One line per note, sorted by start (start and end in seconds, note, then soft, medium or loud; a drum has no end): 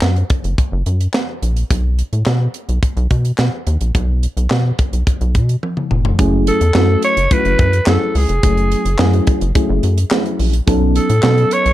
0.01 0.23 F#2 loud
0.01 snare medium
0.01 clap medium
0.16 closed hi-hat soft
0.30 kick loud
0.30 closed hi-hat medium
0.44 0.55 F#1 medium
0.44 closed hi-hat soft
0.58 kick loud
0.58 closed hi-hat medium
0.72 0.83 F#1 loud
0.86 1.08 F#2 medium
0.86 closed hi-hat medium
1.01 closed hi-hat medium
1.14 snare loud
1.14 clap medium
1.42 1.64 A#1 medium
1.42 closed hi-hat medium
1.56 closed hi-hat medium
1.70 2.02 B1 loud
1.70 kick loud
1.70 closed hi-hat loud
1.99 closed hi-hat medium
2.13 2.23 A2 medium
2.13 closed hi-hat soft
2.26 2.48 B2 loud
2.26 snare medium
2.26 clap medium
2.54 closed hi-hat medium
2.69 2.79 B1 medium
2.69 closed hi-hat medium
2.83 kick loud
2.83 closed hi-hat medium
2.97 3.07 B1 loud
2.97 closed hi-hat soft
3.11 3.32 B2 medium
3.11 kick medium
3.11 closed hi-hat medium
3.25 closed hi-hat medium
3.38 3.49 B2 medium
3.38 snare loud
3.38 clap medium
3.67 3.77 D#2 loud
3.67 closed hi-hat medium
3.81 3.91 A#1 medium
3.81 closed hi-hat medium
3.95 4.27 B1 loud
3.95 kick loud
3.95 closed hi-hat medium
4.23 closed hi-hat medium
4.37 4.47 B1 medium
4.37 closed hi-hat soft
4.50 4.72 B2 loud
4.50 snare loud
4.50 clap medium
4.79 kick loud
4.79 closed hi-hat medium
4.93 5.03 B1 medium
4.93 closed hi-hat medium
5.07 kick loud
5.07 closed hi-hat medium
5.21 5.36 B1 loud
5.21 closed hi-hat soft
5.35 5.56 B2 loud
5.35 kick medium
5.35 closed hi-hat medium
5.49 closed hi-hat soft
5.63 high tom soft
5.77 mid tom medium
5.91 6.12 F1 loud
5.91 mid tom medium
6.05 floor tom medium
6.19 6.51 F#1 loud
6.19 6.61 F#3 loud
6.19 6.61 A3 loud
6.19 6.62 C#4 medium
6.19 6.62 E4 medium
6.19 6.62 G#4 loud
6.19 kick loud
6.19 closed hi-hat loud
6.47 7.00 A4 loud
6.47 closed hi-hat medium
6.61 6.72 E2 loud
6.61 closed hi-hat medium
6.74 6.96 F#2 loud
6.74 7.17 F#3 medium
6.74 7.17 A3 medium
6.74 7.18 C#4 medium
6.74 7.18 E4 medium
6.74 7.18 F#4 medium
6.74 snare loud
6.74 clap medium
7.03 7.34 C#5 loud
7.03 closed hi-hat medium
7.17 7.28 F#1 medium
7.17 closed hi-hat medium
7.31 7.73 F#3 medium
7.31 7.74 A3 medium
7.31 7.74 C#4 medium
7.31 7.74 E4 medium
7.31 7.38 F4 medium
7.31 7.88 B4 loud
7.31 kick loud
7.31 closed hi-hat loud
7.38 7.77 F#4 medium
7.45 7.56 F#1 loud
7.45 closed hi-hat soft
7.59 7.80 F#2 loud
7.59 kick loud
7.59 closed hi-hat medium
7.73 closed hi-hat medium
7.86 7.98 F#2 loud
7.86 8.29 F#3 medium
7.86 8.29 A3 medium
7.86 8.30 C#4 medium
7.86 8.30 E4 medium
7.86 8.30 G#4 medium
7.86 8.18 A4 medium
7.86 snare loud
7.86 clap loud
8.15 8.26 C#2 loud
8.15 9.28 G#4 medium
8.15 open hi-hat medium
8.29 8.40 F1 loud
8.29 closed hi-hat medium
8.43 8.75 F#1 medium
8.43 8.86 F#3 medium
8.43 8.86 A3 medium
8.43 8.86 C#4 medium
8.43 8.86 E4 medium
8.43 8.86 G#4 loud
8.43 kick loud
8.43 closed hi-hat loud
8.57 closed hi-hat soft
8.72 closed hi-hat medium
8.85 8.96 F#1 medium
8.85 closed hi-hat medium
8.98 9.21 F#2 loud
8.98 9.42 F#3 loud
8.98 9.42 A3 medium
8.98 9.42 C#4 medium
8.98 9.42 E4 medium
8.98 9.42 G#4 loud
8.98 snare loud
8.98 clap medium
9.13 closed hi-hat soft
9.27 kick loud
9.27 closed hi-hat medium
9.41 9.52 F#1 loud
9.41 closed hi-hat medium
9.55 9.98 F#3 loud
9.55 9.98 A3 loud
9.55 9.98 C#4 medium
9.55 9.98 E4 medium
9.55 9.98 G#4 loud
9.55 kick loud
9.55 closed hi-hat loud
9.69 9.80 F#1 loud
9.83 10.05 F#2 medium
9.83 closed hi-hat medium
9.98 closed hi-hat medium
10.11 10.54 F#3 medium
10.11 10.54 A3 medium
10.11 10.54 C#4 medium
10.11 10.54 E4 medium
10.11 10.54 G#4 medium
10.11 snare loud
10.11 clap loud
10.26 closed hi-hat soft
10.39 10.61 A#1 medium
10.39 open hi-hat medium
10.53 closed hi-hat medium
10.67 10.99 B1 loud
10.67 11.10 F#3 loud
10.67 11.10 B3 loud
10.67 11.10 C#4 loud
10.67 11.10 D#4 medium
10.67 11.10 A4 loud
10.67 kick loud
10.67 closed hi-hat loud
10.96 11.55 A4 loud
10.96 closed hi-hat medium
11.10 11.20 A2 medium
11.10 closed hi-hat medium
11.23 11.45 B2 loud
11.23 11.66 F#3 medium
11.23 11.66 B3 medium
11.23 11.66 C#4 medium
11.23 11.66 D#4 medium
11.23 11.66 A4 loud
11.23 snare loud
11.23 clap medium
11.38 closed hi-hat soft
11.51 11.73 C#5 loud
11.51 closed hi-hat medium
11.66 11.73 B1 medium
11.66 closed hi-hat medium